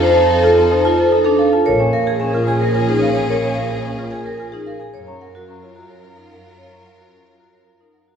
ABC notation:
X:1
M:3/4
L:1/16
Q:1/4=110
K:A#phr
V:1 name="Marimba"
=c =a =f =A a c a c a A f a | A g e G g A g A g G e g | A g e G g A g A g G e g | c a f A a c a c a A f a |
c a f A a c a c a A f a |]
V:2 name="String section"
[_E=A]8- [EA]3 z | [CG]12- | [CG]8- [CG]3 z | [EA]12- |
[EA]8- [EA]3 z |]
V:3 name="Vibraphone"
=c =C =A =F C _E F A E =D A F | c C A G C E G A E D A G | c C A G C E G A E D A G | c C A F C E F A E D A F |
c C A F C E F A E D A F |]
V:4 name="Double bass section" clef=bass
=F,,12 | A,,,12- | A,,,12 | F,,12- |
F,,12 |]